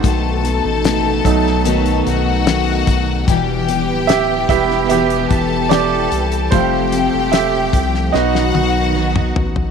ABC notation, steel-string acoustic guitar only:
X:1
M:4/4
L:1/8
Q:1/4=74
K:Em
V:1 name="Steel-string acoustic guitar"
[B,,^D,A,B,F] [A,B,F] [D,A,B,F]2 [B,,D,A,B,F]2 [D,A,B,F]2 | [E,,B,,E,G,B,G] [E,G,B,G] [E,G,B,G]2 [E,,B,,E,G,B,G]2 [E,G,B,G]2 | [=F,A,CG] [A,CG] [F,A,CG]2 [B,,^F,B,^DF]2 [F,B,DF]2 |]